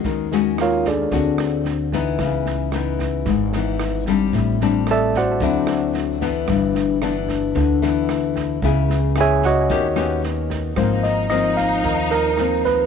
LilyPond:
<<
  \new Staff \with { instrumentName = "Tine electric piano" } { \time 4/4 \key cis \dorian \tempo 4 = 112 r4 <eis' ais' cis'' eis''>8 <d' gis' a' d''>4. r4 | r1 | r4 <a' d'' e'' a''>8 <fis' c'' d'' fis''>4. r4 | r1 |
r4 <gis' cis'' e'' gis''>8 <fis' cis'' dis'' fis''>4. r4 | \key aes \major c''8 ees''8 ees''8 f''4 bes'4 ces''8 | }
  \new Staff \with { instrumentName = "Violin section" } { \time 4/4 \key cis \dorian r1 | r1 | r1 | r1 |
r1 | \key aes \major ees'1 | }
  \new Staff \with { instrumentName = "Nylon-string guitar" } { \time 4/4 \key cis \dorian << { <gis cis' fis'>8 <gis cis' fis'>4. <c' fis'>4. <e b dis'>8~ | <e b dis'>4 <e b dis'>4. <e b dis'>4 <g c' d'>8~ | <g c' d'>8 <g c' d'>4. <fis c' e'>4. <e b d'>8~ | <e b d'>4 <e b d'>4. <e b d'>4. |
<b e' gis'>8 r8 <b e' gis'>8 r8 <b cis' g'>8 <b cis' g'>4. | \key aes \major <f bes c'>4 <f bes c'>2 <f bes c'>4 | } \\ { dis2 d2 | cis2 gis,2 | a,2 d2 | g,2 d2 |
cis2 dis2 | aes,2 ees2 | } >> }
  \new Staff \with { instrumentName = "Upright bass" } { \clef bass \time 4/4 \key cis \dorian dis,2 d,2 | cis,2 gis,,2 | a,,2 d,2 | g,,2 d,2 |
cis,2 dis,2 | \key aes \major aes,,2 ees,2 | }
  \new DrumStaff \with { instrumentName = "Drums" } \drummode { \time 4/4 <bd sn>8 sn8 <ss sn>8 <bd sn>8 <bd sn>8 <ss sn>8 sn8 <bd sn>8 | <bd ss sn>8 sn8 <ss sn>8 <bd sn>8 <bd sn>8 sn8 <ss sn>8 <bd sn>8 | <bd sn>8 sn8 <ss sn>8 <bd sn>8 <bd sn>8 <ss sn>8 sn8 <bd sn>8 | <bd ss sn>8 sn8 <ss sn>8 <bd sn>8 <bd sn>8 sn8 <ss sn>8 <bd sn>8 |
<bd sn>8 sn8 <ss sn>8 <bd sn>8 <bd sn>8 <ss sn>8 sn8 <bd sn>8 | <bd ss sn>8 sn8 <ss sn>8 <bd sn>8 <bd sn>8 sn8 <ss sn>8 <bd sn>8 | }
>>